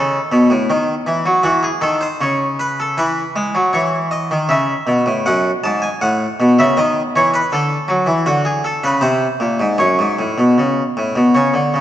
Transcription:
0.00 0.17 C#3 medium
0.00 1.41 A4 medium
0.32 0.50 B2 medium
0.50 0.69 A2 medium
0.70 0.93 D#3 medium
1.06 1.25 E3 medium
1.26 1.44 F#3 medium
1.43 1.67 E3 medium
1.43 1.62 F#4 medium
1.63 1.82 G#4 medium
1.81 2.05 D#3 medium
1.81 2.00 A4 medium
2.01 2.20 C5 medium
2.21 2.95 C#3 medium
2.21 2.45 C#5 medium
2.59 2.78 B4 medium
2.80 2.98 A4 medium
2.98 3.21 E3 medium
2.98 3.72 B4 medium
3.36 3.54 G#3 medium
3.55 3.73 F#3 medium
3.73 4.29 E3 medium
3.73 3.97 C#5 medium
4.11 4.35 D#5 medium
4.31 4.49 D#3 medium
4.49 4.73 C#3 medium
4.49 5.23 E5 medium
4.87 5.06 B2 medium
5.06 5.25 A2 medium
5.26 5.49 F#2 medium
5.26 5.49 F#5 medium
5.64 5.87 G#2 medium
5.64 5.82 A5 medium
5.82 6.00 G#5 medium
6.01 6.25 A2 medium
6.01 6.56 F#5 medium
6.40 6.58 B2 medium
6.59 6.76 C#3 medium
6.59 6.76 E5 medium
6.77 7.00 D#3 medium
6.77 7.00 D#5 medium
7.16 7.38 E3 medium
7.16 7.33 C#5 medium
7.34 7.51 B4 medium
7.52 7.75 D3 medium
7.52 8.25 A4 medium
7.88 8.07 F#3 medium
8.06 8.25 E3 medium
8.26 8.81 D3 medium
8.26 8.45 F#4 medium
8.45 8.63 G#4 medium
8.64 8.83 A4 medium
8.84 9.02 C#3 medium
8.84 9.02 B4 medium
9.01 9.25 C3 medium
9.01 9.76 C5 medium
9.40 9.59 A#2 medium
9.60 9.78 G#2 medium
9.78 9.97 F#2 medium
9.78 11.28 C#5 medium
9.99 10.17 G#2 medium
10.19 10.37 A2 medium
10.38 10.56 B2 medium
10.58 10.81 C#3 medium
10.97 11.14 A2 medium
11.15 11.33 B2 medium
11.35 11.52 C#3 medium
11.35 11.81 C#5 medium
11.54 11.71 D3 medium
11.74 11.81 C#3 medium

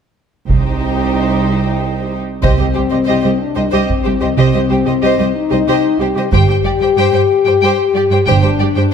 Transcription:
0.49 1.10 C2 soft
0.49 2.20 C2 soft
0.49 2.20 D#4 soft
0.49 2.20 G4 soft
0.49 2.20 C5 soft
0.49 taiko soft
2.42 2.58 C2 soft
2.42 2.50 C2 soft
2.42 3.36 C4 soft
2.42 2.58 G4 soft
2.42 2.58 C5 soft
2.42 2.58 D#5 soft
2.42 taiko soft
2.59 2.67 C2 soft
2.59 2.66 G4 soft
2.59 2.66 C5 soft
2.59 2.66 D#5 soft
2.74 2.83 C2 soft
2.74 2.81 G4 soft
2.74 2.82 G4 soft
2.74 2.82 C5 soft
2.90 2.99 C2 soft
2.90 2.98 G4 soft
2.90 2.97 C5 soft
2.90 2.97 D#5 soft
3.05 3.15 C2 soft
3.05 3.22 G4 soft
3.05 3.21 C5 soft
3.05 3.22 D#5 soft
3.22 3.31 C2 soft
3.22 3.30 G4 soft
3.22 3.29 C5 soft
3.22 3.30 D#5 soft
3.39 3.72 D4 soft
3.55 3.64 C2 soft
3.55 3.62 G4 soft
3.55 3.62 C5 soft
3.55 3.63 D#5 soft
3.70 3.80 C2 soft
3.70 4.36 C4 soft
3.70 3.88 G4 soft
3.70 3.87 C5 soft
3.70 3.88 D#5 soft
3.90 taiko soft
4.04 4.13 C2 soft
4.04 4.11 G4 soft
4.04 4.12 G4 soft
4.04 4.11 C5 soft
4.21 4.29 C2 soft
4.21 4.27 G4 soft
4.21 4.28 C5 soft
4.21 4.28 D#5 soft
4.37 4.53 C2 soft
4.37 4.45 C2 soft
4.37 5.33 C4 soft
4.37 4.52 G4 soft
4.37 4.53 C5 soft
4.37 4.52 D#5 soft
4.53 4.61 C2 soft
4.53 4.60 G4 soft
4.53 4.61 C5 soft
4.53 4.60 D#5 soft
4.70 4.77 C2 soft
4.70 4.76 G4 soft
4.70 4.78 G4 soft
4.70 4.76 C5 soft
4.85 4.93 C2 soft
4.85 4.92 G4 soft
4.85 4.94 C5 soft
4.85 4.93 D#5 soft
5.01 5.10 C2 soft
5.01 5.17 G4 soft
5.01 5.19 C5 soft
5.01 5.17 D#5 soft
5.18 5.25 C2 soft
5.18 5.25 G4 soft
5.18 5.27 C5 soft
5.18 5.25 D#5 soft
5.34 5.98 D#4 medium
5.50 5.58 C2 soft
5.50 5.57 G4 soft
5.50 5.58 C5 soft
5.50 5.58 D#5 soft
5.67 5.74 C2 soft
5.67 5.82 G4 soft
5.67 5.83 C5 soft
5.67 5.83 D#5 soft
5.99 6.06 C2 soft
5.99 6.30 G4 medium
5.99 6.06 G4 soft
5.99 6.07 G4 soft
5.99 6.07 C5 soft
6.16 6.22 C2 soft
6.16 6.22 G4 soft
6.16 6.24 C5 soft
6.16 6.23 D#5 soft
6.32 6.48 G1 soft
6.32 6.39 G2 soft
6.32 8.22 G4 medium
6.32 6.47 G4 soft
6.32 6.48 C5 soft
6.32 6.48 G5 soft
6.32 taiko soft
6.48 6.54 G2 soft
6.48 6.55 G4 soft
6.48 6.56 C5 soft
6.48 6.56 G5 soft
6.63 6.70 G2 soft
6.63 6.71 G4 soft
6.63 6.72 G4 soft
6.63 6.71 D5 soft
6.79 6.86 G2 soft
6.79 6.88 G4 soft
6.79 6.89 C5 soft
6.79 6.88 G5 soft
6.96 7.03 G2 soft
6.96 7.12 G4 soft
6.96 7.13 C5 soft
6.96 7.12 G5 soft
7.12 7.19 G2 soft
7.12 7.20 G4 soft
7.12 7.21 C5 soft
7.12 7.21 G5 soft
7.45 7.52 G2 soft
7.45 7.52 G4 soft
7.45 7.53 C5 soft
7.45 7.52 G5 soft
7.61 7.68 G2 soft
7.61 7.78 G4 soft
7.61 7.78 C5 medium
7.61 7.76 G5 soft
7.94 8.00 G2 soft
7.94 8.01 G4 soft
7.94 8.03 G4 soft
7.94 8.01 D5 soft
8.10 8.17 G2 soft
8.10 8.18 G4 soft
8.10 8.18 C5 soft
8.10 8.17 G5 soft
8.26 8.42 G1 medium
8.26 8.33 G2 medium
8.26 8.94 D4 medium
8.26 8.42 G4 soft
8.26 8.41 C5 soft
8.26 8.41 G5 soft
8.42 8.49 G2 soft
8.42 8.50 G4 soft
8.42 8.49 C5 soft
8.42 8.49 G5 soft
8.59 8.66 G2 soft
8.59 8.66 G4 soft
8.59 8.67 G4 soft
8.59 8.66 D5 soft
8.75 8.82 G2 soft
8.75 8.83 G4 soft
8.75 8.83 C5 soft
8.75 8.82 G5 soft

